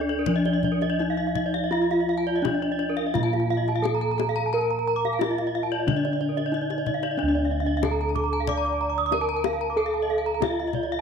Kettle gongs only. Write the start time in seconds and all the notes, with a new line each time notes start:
Already playing: D2
0.27 F3
0.99 D#4
1.72 F4
2.44 D#4
3.15 A#2
3.84 D#4
4.54 A#4
5.21 D#4
5.87 D3
6.53 D#4
7.17 D4
7.23 D2
7.82 D#4
9.11 D#4
9.76 A4
10.40 D#4